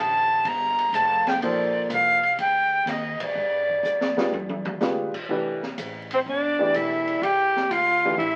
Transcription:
Already playing: upright bass A1, grand piano D3 A3 G4 C5 D#5
0.00 flute A5
0.45 upright bass G1, flute A#5, ride
0.79 ride
0.93 upright bass F1, flute A5, hi-hat pedal, ride
1.27 flute G5, snare, ride
1.41 upright bass A#1, grand piano F3 A#3 D#4 A4 C5, flute D5, ride
1.90 upright bass C2, flute F5, hi-hat pedal, ride
2.23 ride
2.38 upright bass D2, flute G5, ride
2.86 upright bass D#2, flute D#5, snare, hi-hat pedal, ride
3.20 flute D5, kick, ride
3.35 upright bass G2
3.69 kick
3.83 upright bass F2, hi-hat pedal
4.01 snare
4.17 grand piano G#3 D4 F4 G4 B4, snare
4.32 upright bass E2, high tom
4.49 high tom
4.65 floor tom
4.80 upright bass D2, grand piano G#3 D4 F4 G4 B4, snare, hi-hat pedal
5.14 muted upright bass stroke, kick, crash
5.29 upright bass C2, grand piano E3 A3 D4 G4 B4
5.63 snare
5.78 upright bass A1, hi-hat pedal, ride
6.11 tenor saxophone C4, flute C5, ride
6.26 upright bass G1, tenor saxophone D4, flute D5
6.59 grand piano E3 A3 D4 G4 D5
6.74 upright bass B1, tenor saxophone E4, flute E5, hi-hat pedal, ride
7.07 ride
7.22 upright bass C2, tenor saxophone G4, flute G5, ride
7.56 snare
7.70 upright bass D2, tenor saxophone F4, flute F5, hi-hat pedal, ride
8.04 grand piano E3 A3 D4 G4 B4
8.18 upright bass A1, tenor saxophone E4, flute E5, ride

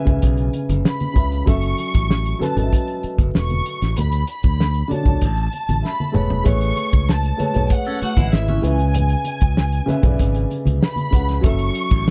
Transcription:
Already playing: grand piano C#3 C#4 B4 E5, violin section G#5
0.05 fingered electric bass C#2, grand piano C#3 C#4 B4 E5, kick, closed hi-hat, low conga
0.22 fingered electric bass B1, kick, closed hi-hat, muted conga
0.37 closed hi-hat
0.53 closed hi-hat, muted conga
0.69 fingered electric bass F#1, closed hi-hat, high conga
0.85 violin section B5, snare, muted conga
1.00 closed hi-hat, high conga
1.14 fingered electric bass C#2, grand piano C#3 C#4 B4 E5, kick, closed hi-hat, muted conga
1.32 closed hi-hat
1.46 fingered electric bass F#1, grand piano F#3 C#4 A4 E5, kick, closed hi-hat, muted conga, low conga
1.50 violin section C#6
1.62 closed hi-hat
1.78 closed hi-hat, muted conga
1.94 fingered electric bass A1, kick, closed hi-hat
2.11 snare, muted conga
2.25 closed hi-hat
2.39 grand piano F#3 C#4 A4 B4, muted fingered electric bass stroke, snare, closed hi-hat, high conga
2.43 violin section A5
2.54 fingered electric bass G#1, grand piano F#3 C#4 A4 D#5, closed hi-hat, low conga
2.63 grand piano E5
2.72 kick, closed hi-hat, muted conga
2.88 closed hi-hat
3.03 muted fingered electric bass stroke, closed hi-hat
3.18 fingered electric bass F#1, kick, closed hi-hat, high conga
3.34 fingered electric bass E1, snare, muted conga
3.38 violin section C#6
3.50 closed hi-hat, high conga
3.66 closed hi-hat
3.82 fingered electric bass A1, snare, closed hi-hat
3.97 fingered electric bass D2, violin section B5, closed hi-hat, muted conga, low conga
4.12 closed hi-hat
4.27 violin section B5, closed hi-hat
4.43 fingered electric bass D2, kick, closed hi-hat
4.60 snare, muted conga
4.74 closed hi-hat
4.88 grand piano D3 D4 F#4 C#5, muted fingered electric bass stroke, closed hi-hat, muted conga, high conga
4.94 violin section A5
5.03 fingered electric bass C#2, grand piano D3 D4 F#4 C#5, kick, closed hi-hat
5.08 low conga
5.21 fingered electric bass A1, kick, closed hi-hat, muted conga
5.37 closed hi-hat
5.52 closed hi-hat, muted conga
5.69 fingered electric bass A1, closed hi-hat, high conga
5.82 grand piano E5, snare, muted conga
5.87 violin section B5
6.00 high conga
6.12 grand piano A3 G#4 B4 C#5 A5, mid tom, muted conga
6.16 fingered electric bass E1, violin section B5
6.30 floor tom
6.43 fingered electric bass A1, grand piano A3 G#4 B4 C#5, violin section C#6, kick, closed hi-hat, muted conga, low conga
6.61 closed hi-hat
6.76 closed hi-hat, muted conga
6.92 fingered electric bass C#2, kick, closed hi-hat
7.09 violin section A5, snare
7.23 closed hi-hat
7.37 grand piano A3 G#4 B4 C#5, muted fingered electric bass stroke, closed hi-hat, muted conga, high conga
7.53 fingered electric bass B1, grand piano A3 G#4 B4 C#5, closed hi-hat, low conga
7.70 violin section F#5, kick, closed hi-hat
7.85 clean electric guitar C#4 A4, closed hi-hat
8.01 clean electric guitar A3 F#4, muted fingered electric bass stroke, closed hi-hat, muted conga
8.17 fingered electric bass A1, clean electric guitar G#3 E4, kick, closed hi-hat, high conga
8.33 fingered electric bass G#1, violin section E5, snare
8.48 clean electric guitar E3 C#4, closed hi-hat, high conga
8.61 fingered electric bass C#2, grand piano C#3 C#4 B4 E5, violin section G#5, closed hi-hat
8.79 closed hi-hat
8.94 closed hi-hat, low conga
9.09 closed hi-hat
9.24 closed hi-hat, muted conga
9.40 fingered electric bass C#2, kick, closed hi-hat
9.56 snare, muted conga
9.72 closed hi-hat
9.86 grand piano C#3 C#4 B4 E5, muted fingered electric bass stroke, snare, closed hi-hat, high conga
10.02 fingered electric bass B1, grand piano C#3 C#4 B4 D5, kick, closed hi-hat, low conga
10.12 grand piano E5
10.19 fingered electric bass G#1, kick, closed hi-hat, muted conga
10.34 closed hi-hat
10.51 closed hi-hat, muted conga
10.65 fingered electric bass C#2, closed hi-hat, high conga
10.83 violin section B5, snare
10.96 closed hi-hat, high conga
11.10 fingered electric bass C#2, grand piano C#3 C#4 B4 F#5, kick, closed hi-hat, muted conga
11.29 snare, closed hi-hat
11.41 fingered electric bass F#1, grand piano F#3 C#4 A4 E5, kick, closed hi-hat, low conga
11.47 violin section C#6
11.59 closed hi-hat
11.75 closed hi-hat
11.90 fingered electric bass A1, kick, closed hi-hat

